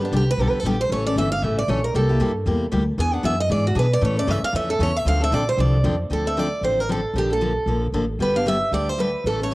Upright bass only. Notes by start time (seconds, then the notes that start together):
Already playing: G2
0.12 C2
0.37 B1
0.52 muted upright bass stroke
0.63 A#1
0.90 A1
1.16 G1
1.42 A1
1.68 A#1
1.94 C2
2.20 G2
2.46 E2
2.72 D2
2.98 E2
3.24 F#2
3.50 G#2
3.75 B2
4.02 A2
4.27 G2
4.42 muted upright bass stroke
4.53 F2
4.79 E2
5.05 D2
5.31 A#1
5.58 C2
5.84 F2
6.10 D2
6.61 A1
7.14 A#1
7.66 A#1
7.92 A1
8.19 G1
8.72 D2
9.24 A1